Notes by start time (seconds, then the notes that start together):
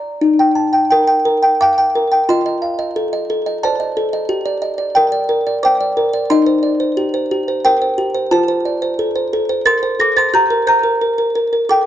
Already playing: A#4 D5
0.21 D#4
0.39 G5
0.55 A5
0.73 G5
0.90 A#4 G5
1.07 G5
1.25 A#4
1.43 G5
1.61 F5 G5 D6
1.78 G5
1.95 A#4
2.12 G5
2.29 F4 D#5 C6
2.46 D#5
2.62 F5
2.79 D#5
2.96 A4
3.13 D#5
3.30 A4
3.46 D#5
3.63 C5 D5 A5
3.80 D#5
3.97 A4
4.13 D#5
4.29 G4
4.46 D5
4.62 D#5
4.78 D5
4.95 A#4 G5
5.12 D5
5.29 A#4
5.47 D5
5.63 C5 G5 D6
5.80 D5
5.97 A#4
6.13 D5
6.30 D#4 D#5 C6
6.46 C5
6.63 D5
6.80 C5
6.97 G4
7.14 C5
7.31 G4
7.48 C5
7.65 A#4 C5 G5
7.82 C5
7.98 G4
8.14 C5
8.31 F4 C5 A5
8.48 C5
8.65 D5
8.82 C5
8.99 A4
9.15 C5
9.33 A4
9.49 C5
9.65 A#4 C6 A6
9.83 C5
10.00 A4 D6 A#6
10.16 C5 C6 A6
10.34 G4 A#5 G6
10.50 A#4
10.67 C5 A#5 G6
10.83 A#4
11.01 A#4
11.18 A#4
11.35 A#4
11.53 A#4
11.69 A4 G5 D6